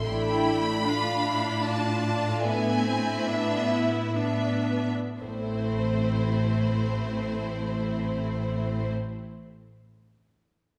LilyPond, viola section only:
\new Staff \with { instrumentName = "Viola section" } { \time 3/4 \key a \minor \tempo 4 = 64 << { e'4 d'2 | b8 c'8 d'8 e'8 d'8 r8 | c'2.~ | c'2. | } \\ { a4 d'2~ | d'4 b4 b8 r8 | a2.~ | a2. | } >> }